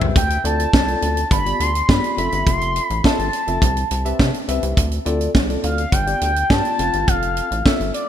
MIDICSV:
0, 0, Header, 1, 5, 480
1, 0, Start_track
1, 0, Tempo, 576923
1, 129, Time_signature, 4, 2, 24, 8
1, 6728, End_track
2, 0, Start_track
2, 0, Title_t, "Analog synth lead"
2, 0, Program_c, 0, 81
2, 142, Note_on_c, 0, 79, 98
2, 359, Note_off_c, 0, 79, 0
2, 385, Note_on_c, 0, 81, 105
2, 1064, Note_off_c, 0, 81, 0
2, 1101, Note_on_c, 0, 83, 117
2, 1344, Note_on_c, 0, 84, 111
2, 1356, Note_off_c, 0, 83, 0
2, 1579, Note_on_c, 0, 83, 112
2, 1592, Note_off_c, 0, 84, 0
2, 1814, Note_off_c, 0, 83, 0
2, 1819, Note_on_c, 0, 83, 100
2, 2038, Note_off_c, 0, 83, 0
2, 2054, Note_on_c, 0, 84, 111
2, 2378, Note_off_c, 0, 84, 0
2, 2378, Note_on_c, 0, 83, 111
2, 2498, Note_off_c, 0, 83, 0
2, 2538, Note_on_c, 0, 81, 97
2, 3700, Note_off_c, 0, 81, 0
2, 4691, Note_on_c, 0, 77, 96
2, 4926, Note_on_c, 0, 79, 117
2, 4939, Note_off_c, 0, 77, 0
2, 5405, Note_on_c, 0, 81, 127
2, 5417, Note_off_c, 0, 79, 0
2, 5887, Note_on_c, 0, 77, 108
2, 5899, Note_off_c, 0, 81, 0
2, 6367, Note_on_c, 0, 76, 92
2, 6380, Note_off_c, 0, 77, 0
2, 6602, Note_off_c, 0, 76, 0
2, 6607, Note_on_c, 0, 74, 88
2, 6728, Note_off_c, 0, 74, 0
2, 6728, End_track
3, 0, Start_track
3, 0, Title_t, "Tine electric piano"
3, 0, Program_c, 1, 4
3, 0, Note_on_c, 1, 60, 73
3, 0, Note_on_c, 1, 67, 67
3, 0, Note_on_c, 1, 71, 66
3, 0, Note_on_c, 1, 76, 79
3, 128, Note_off_c, 1, 60, 0
3, 129, Note_off_c, 1, 67, 0
3, 130, Note_off_c, 1, 71, 0
3, 131, Note_off_c, 1, 76, 0
3, 366, Note_on_c, 1, 60, 77
3, 368, Note_on_c, 1, 65, 78
3, 369, Note_on_c, 1, 69, 76
3, 372, Note_on_c, 1, 74, 88
3, 562, Note_off_c, 1, 60, 0
3, 563, Note_off_c, 1, 65, 0
3, 564, Note_off_c, 1, 69, 0
3, 565, Note_off_c, 1, 74, 0
3, 725, Note_on_c, 1, 60, 82
3, 729, Note_on_c, 1, 65, 75
3, 731, Note_on_c, 1, 69, 67
3, 734, Note_on_c, 1, 74, 87
3, 986, Note_off_c, 1, 60, 0
3, 988, Note_off_c, 1, 65, 0
3, 989, Note_off_c, 1, 69, 0
3, 991, Note_off_c, 1, 74, 0
3, 1209, Note_on_c, 1, 59, 70
3, 1212, Note_on_c, 1, 65, 63
3, 1214, Note_on_c, 1, 67, 67
3, 1216, Note_on_c, 1, 74, 76
3, 1403, Note_off_c, 1, 59, 0
3, 1405, Note_off_c, 1, 65, 0
3, 1406, Note_off_c, 1, 67, 0
3, 1407, Note_off_c, 1, 74, 0
3, 1566, Note_on_c, 1, 59, 77
3, 1567, Note_on_c, 1, 65, 69
3, 1570, Note_on_c, 1, 67, 68
3, 1573, Note_on_c, 1, 74, 84
3, 1801, Note_off_c, 1, 65, 0
3, 1807, Note_off_c, 1, 59, 0
3, 1808, Note_on_c, 1, 60, 74
3, 1810, Note_off_c, 1, 67, 0
3, 1811, Note_off_c, 1, 74, 0
3, 1811, Note_on_c, 1, 65, 69
3, 1814, Note_on_c, 1, 69, 70
3, 1815, Note_on_c, 1, 76, 89
3, 2385, Note_off_c, 1, 60, 0
3, 2386, Note_off_c, 1, 65, 0
3, 2388, Note_off_c, 1, 69, 0
3, 2388, Note_off_c, 1, 76, 0
3, 2525, Note_on_c, 1, 60, 71
3, 2526, Note_on_c, 1, 65, 68
3, 2529, Note_on_c, 1, 69, 66
3, 2531, Note_on_c, 1, 76, 83
3, 2721, Note_off_c, 1, 60, 0
3, 2722, Note_off_c, 1, 65, 0
3, 2723, Note_off_c, 1, 69, 0
3, 2724, Note_off_c, 1, 76, 0
3, 2886, Note_on_c, 1, 60, 74
3, 2889, Note_on_c, 1, 65, 68
3, 2890, Note_on_c, 1, 69, 68
3, 2893, Note_on_c, 1, 76, 79
3, 3007, Note_off_c, 1, 60, 0
3, 3009, Note_off_c, 1, 65, 0
3, 3009, Note_off_c, 1, 69, 0
3, 3011, Note_off_c, 1, 76, 0
3, 3369, Note_on_c, 1, 60, 100
3, 3370, Note_on_c, 1, 67, 85
3, 3373, Note_on_c, 1, 71, 84
3, 3374, Note_on_c, 1, 76, 104
3, 3563, Note_off_c, 1, 60, 0
3, 3564, Note_off_c, 1, 67, 0
3, 3565, Note_off_c, 1, 71, 0
3, 3566, Note_off_c, 1, 76, 0
3, 3727, Note_on_c, 1, 60, 88
3, 3728, Note_on_c, 1, 67, 81
3, 3731, Note_on_c, 1, 71, 84
3, 3733, Note_on_c, 1, 76, 102
3, 3968, Note_off_c, 1, 60, 0
3, 3969, Note_off_c, 1, 67, 0
3, 3970, Note_off_c, 1, 71, 0
3, 3971, Note_off_c, 1, 76, 0
3, 4205, Note_on_c, 1, 60, 97
3, 4208, Note_on_c, 1, 65, 90
3, 4210, Note_on_c, 1, 69, 93
3, 4212, Note_on_c, 1, 74, 108
3, 4401, Note_off_c, 1, 60, 0
3, 4403, Note_off_c, 1, 65, 0
3, 4404, Note_off_c, 1, 69, 0
3, 4405, Note_off_c, 1, 74, 0
3, 4566, Note_on_c, 1, 60, 79
3, 4569, Note_on_c, 1, 65, 75
3, 4572, Note_on_c, 1, 69, 73
3, 4573, Note_on_c, 1, 74, 88
3, 4827, Note_off_c, 1, 60, 0
3, 4828, Note_off_c, 1, 65, 0
3, 4830, Note_off_c, 1, 69, 0
3, 4830, Note_off_c, 1, 74, 0
3, 5046, Note_on_c, 1, 59, 71
3, 5047, Note_on_c, 1, 65, 69
3, 5050, Note_on_c, 1, 67, 71
3, 5051, Note_on_c, 1, 74, 81
3, 5242, Note_off_c, 1, 59, 0
3, 5242, Note_off_c, 1, 65, 0
3, 5244, Note_off_c, 1, 67, 0
3, 5245, Note_off_c, 1, 74, 0
3, 5405, Note_on_c, 1, 59, 76
3, 5408, Note_on_c, 1, 65, 70
3, 5410, Note_on_c, 1, 67, 71
3, 5410, Note_on_c, 1, 74, 81
3, 5638, Note_off_c, 1, 65, 0
3, 5644, Note_on_c, 1, 60, 78
3, 5647, Note_off_c, 1, 59, 0
3, 5648, Note_on_c, 1, 65, 72
3, 5649, Note_off_c, 1, 67, 0
3, 5649, Note_on_c, 1, 69, 73
3, 5650, Note_off_c, 1, 74, 0
3, 5652, Note_on_c, 1, 77, 92
3, 6223, Note_off_c, 1, 60, 0
3, 6224, Note_off_c, 1, 65, 0
3, 6225, Note_off_c, 1, 69, 0
3, 6226, Note_off_c, 1, 77, 0
3, 6365, Note_on_c, 1, 60, 71
3, 6365, Note_on_c, 1, 65, 66
3, 6369, Note_on_c, 1, 69, 67
3, 6371, Note_on_c, 1, 76, 81
3, 6561, Note_off_c, 1, 60, 0
3, 6561, Note_off_c, 1, 65, 0
3, 6563, Note_off_c, 1, 69, 0
3, 6565, Note_off_c, 1, 76, 0
3, 6728, End_track
4, 0, Start_track
4, 0, Title_t, "Analog synth bass"
4, 0, Program_c, 2, 38
4, 11, Note_on_c, 2, 36, 91
4, 102, Note_off_c, 2, 36, 0
4, 132, Note_on_c, 2, 38, 110
4, 315, Note_off_c, 2, 38, 0
4, 368, Note_on_c, 2, 38, 106
4, 552, Note_off_c, 2, 38, 0
4, 613, Note_on_c, 2, 36, 97
4, 796, Note_off_c, 2, 36, 0
4, 853, Note_on_c, 2, 38, 85
4, 1035, Note_off_c, 2, 38, 0
4, 1090, Note_on_c, 2, 31, 107
4, 1274, Note_off_c, 2, 31, 0
4, 1331, Note_on_c, 2, 38, 99
4, 1514, Note_off_c, 2, 38, 0
4, 1572, Note_on_c, 2, 43, 94
4, 1663, Note_off_c, 2, 43, 0
4, 1811, Note_on_c, 2, 29, 88
4, 1902, Note_off_c, 2, 29, 0
4, 1933, Note_on_c, 2, 31, 92
4, 2024, Note_off_c, 2, 31, 0
4, 2052, Note_on_c, 2, 29, 104
4, 2327, Note_off_c, 2, 29, 0
4, 2415, Note_on_c, 2, 33, 100
4, 2505, Note_off_c, 2, 33, 0
4, 2653, Note_on_c, 2, 31, 91
4, 2744, Note_off_c, 2, 31, 0
4, 2894, Note_on_c, 2, 29, 98
4, 2984, Note_off_c, 2, 29, 0
4, 3012, Note_on_c, 2, 36, 119
4, 3195, Note_off_c, 2, 36, 0
4, 3254, Note_on_c, 2, 36, 97
4, 3436, Note_off_c, 2, 36, 0
4, 3492, Note_on_c, 2, 48, 105
4, 3583, Note_off_c, 2, 48, 0
4, 3731, Note_on_c, 2, 36, 93
4, 3822, Note_off_c, 2, 36, 0
4, 3851, Note_on_c, 2, 36, 96
4, 3942, Note_off_c, 2, 36, 0
4, 3971, Note_on_c, 2, 38, 111
4, 4154, Note_off_c, 2, 38, 0
4, 4211, Note_on_c, 2, 38, 99
4, 4394, Note_off_c, 2, 38, 0
4, 4450, Note_on_c, 2, 36, 96
4, 4634, Note_off_c, 2, 36, 0
4, 4691, Note_on_c, 2, 38, 90
4, 4874, Note_off_c, 2, 38, 0
4, 4930, Note_on_c, 2, 31, 113
4, 5114, Note_off_c, 2, 31, 0
4, 5172, Note_on_c, 2, 38, 94
4, 5355, Note_off_c, 2, 38, 0
4, 5408, Note_on_c, 2, 43, 110
4, 5501, Note_off_c, 2, 43, 0
4, 5652, Note_on_c, 2, 29, 100
4, 5743, Note_off_c, 2, 29, 0
4, 5773, Note_on_c, 2, 31, 90
4, 5864, Note_off_c, 2, 31, 0
4, 5891, Note_on_c, 2, 29, 106
4, 6166, Note_off_c, 2, 29, 0
4, 6251, Note_on_c, 2, 33, 89
4, 6342, Note_off_c, 2, 33, 0
4, 6492, Note_on_c, 2, 31, 90
4, 6583, Note_off_c, 2, 31, 0
4, 6728, End_track
5, 0, Start_track
5, 0, Title_t, "Drums"
5, 12, Note_on_c, 9, 43, 96
5, 96, Note_off_c, 9, 43, 0
5, 131, Note_on_c, 9, 36, 123
5, 132, Note_on_c, 9, 42, 103
5, 214, Note_off_c, 9, 36, 0
5, 216, Note_off_c, 9, 42, 0
5, 252, Note_on_c, 9, 42, 57
5, 336, Note_off_c, 9, 42, 0
5, 374, Note_on_c, 9, 42, 76
5, 457, Note_off_c, 9, 42, 0
5, 496, Note_on_c, 9, 42, 54
5, 579, Note_off_c, 9, 42, 0
5, 611, Note_on_c, 9, 36, 115
5, 618, Note_on_c, 9, 38, 117
5, 694, Note_off_c, 9, 36, 0
5, 701, Note_off_c, 9, 38, 0
5, 734, Note_on_c, 9, 42, 44
5, 818, Note_off_c, 9, 42, 0
5, 851, Note_on_c, 9, 42, 84
5, 934, Note_off_c, 9, 42, 0
5, 973, Note_on_c, 9, 42, 57
5, 1056, Note_off_c, 9, 42, 0
5, 1090, Note_on_c, 9, 36, 118
5, 1094, Note_on_c, 9, 42, 96
5, 1173, Note_off_c, 9, 36, 0
5, 1178, Note_off_c, 9, 42, 0
5, 1216, Note_on_c, 9, 42, 55
5, 1299, Note_off_c, 9, 42, 0
5, 1334, Note_on_c, 9, 42, 83
5, 1417, Note_off_c, 9, 42, 0
5, 1457, Note_on_c, 9, 42, 55
5, 1541, Note_off_c, 9, 42, 0
5, 1571, Note_on_c, 9, 36, 114
5, 1576, Note_on_c, 9, 38, 111
5, 1655, Note_off_c, 9, 36, 0
5, 1659, Note_off_c, 9, 38, 0
5, 1697, Note_on_c, 9, 42, 50
5, 1780, Note_off_c, 9, 42, 0
5, 1815, Note_on_c, 9, 42, 81
5, 1899, Note_off_c, 9, 42, 0
5, 1933, Note_on_c, 9, 42, 56
5, 2016, Note_off_c, 9, 42, 0
5, 2052, Note_on_c, 9, 36, 122
5, 2053, Note_on_c, 9, 42, 102
5, 2135, Note_off_c, 9, 36, 0
5, 2136, Note_off_c, 9, 42, 0
5, 2175, Note_on_c, 9, 42, 52
5, 2258, Note_off_c, 9, 42, 0
5, 2294, Note_on_c, 9, 42, 73
5, 2378, Note_off_c, 9, 42, 0
5, 2415, Note_on_c, 9, 42, 55
5, 2498, Note_off_c, 9, 42, 0
5, 2532, Note_on_c, 9, 36, 108
5, 2540, Note_on_c, 9, 38, 109
5, 2615, Note_off_c, 9, 36, 0
5, 2623, Note_off_c, 9, 38, 0
5, 2658, Note_on_c, 9, 42, 46
5, 2741, Note_off_c, 9, 42, 0
5, 2772, Note_on_c, 9, 42, 78
5, 2855, Note_off_c, 9, 42, 0
5, 2892, Note_on_c, 9, 42, 57
5, 2975, Note_off_c, 9, 42, 0
5, 3010, Note_on_c, 9, 36, 118
5, 3014, Note_on_c, 9, 42, 104
5, 3093, Note_off_c, 9, 36, 0
5, 3097, Note_off_c, 9, 42, 0
5, 3134, Note_on_c, 9, 42, 53
5, 3217, Note_off_c, 9, 42, 0
5, 3251, Note_on_c, 9, 42, 85
5, 3335, Note_off_c, 9, 42, 0
5, 3375, Note_on_c, 9, 42, 57
5, 3459, Note_off_c, 9, 42, 0
5, 3490, Note_on_c, 9, 36, 108
5, 3494, Note_on_c, 9, 38, 110
5, 3573, Note_off_c, 9, 36, 0
5, 3577, Note_off_c, 9, 38, 0
5, 3614, Note_on_c, 9, 42, 50
5, 3697, Note_off_c, 9, 42, 0
5, 3732, Note_on_c, 9, 42, 86
5, 3815, Note_off_c, 9, 42, 0
5, 3850, Note_on_c, 9, 42, 54
5, 3933, Note_off_c, 9, 42, 0
5, 3970, Note_on_c, 9, 36, 121
5, 3971, Note_on_c, 9, 42, 99
5, 4053, Note_off_c, 9, 36, 0
5, 4055, Note_off_c, 9, 42, 0
5, 4090, Note_on_c, 9, 42, 52
5, 4173, Note_off_c, 9, 42, 0
5, 4209, Note_on_c, 9, 42, 72
5, 4293, Note_off_c, 9, 42, 0
5, 4332, Note_on_c, 9, 42, 58
5, 4416, Note_off_c, 9, 42, 0
5, 4449, Note_on_c, 9, 36, 115
5, 4452, Note_on_c, 9, 38, 118
5, 4532, Note_off_c, 9, 36, 0
5, 4536, Note_off_c, 9, 38, 0
5, 4574, Note_on_c, 9, 42, 43
5, 4657, Note_off_c, 9, 42, 0
5, 4689, Note_on_c, 9, 42, 79
5, 4772, Note_off_c, 9, 42, 0
5, 4809, Note_on_c, 9, 42, 55
5, 4892, Note_off_c, 9, 42, 0
5, 4929, Note_on_c, 9, 36, 125
5, 4930, Note_on_c, 9, 42, 97
5, 5012, Note_off_c, 9, 36, 0
5, 5013, Note_off_c, 9, 42, 0
5, 5053, Note_on_c, 9, 42, 52
5, 5136, Note_off_c, 9, 42, 0
5, 5171, Note_on_c, 9, 42, 87
5, 5254, Note_off_c, 9, 42, 0
5, 5294, Note_on_c, 9, 42, 58
5, 5377, Note_off_c, 9, 42, 0
5, 5409, Note_on_c, 9, 36, 117
5, 5412, Note_on_c, 9, 38, 112
5, 5492, Note_off_c, 9, 36, 0
5, 5495, Note_off_c, 9, 38, 0
5, 5532, Note_on_c, 9, 42, 48
5, 5615, Note_off_c, 9, 42, 0
5, 5650, Note_on_c, 9, 42, 84
5, 5733, Note_off_c, 9, 42, 0
5, 5769, Note_on_c, 9, 42, 53
5, 5853, Note_off_c, 9, 42, 0
5, 5889, Note_on_c, 9, 42, 101
5, 5890, Note_on_c, 9, 36, 120
5, 5972, Note_off_c, 9, 42, 0
5, 5973, Note_off_c, 9, 36, 0
5, 6011, Note_on_c, 9, 42, 55
5, 6094, Note_off_c, 9, 42, 0
5, 6129, Note_on_c, 9, 42, 73
5, 6212, Note_off_c, 9, 42, 0
5, 6254, Note_on_c, 9, 42, 55
5, 6337, Note_off_c, 9, 42, 0
5, 6370, Note_on_c, 9, 36, 109
5, 6374, Note_on_c, 9, 38, 120
5, 6453, Note_off_c, 9, 36, 0
5, 6457, Note_off_c, 9, 38, 0
5, 6494, Note_on_c, 9, 42, 44
5, 6577, Note_off_c, 9, 42, 0
5, 6608, Note_on_c, 9, 42, 76
5, 6691, Note_off_c, 9, 42, 0
5, 6728, End_track
0, 0, End_of_file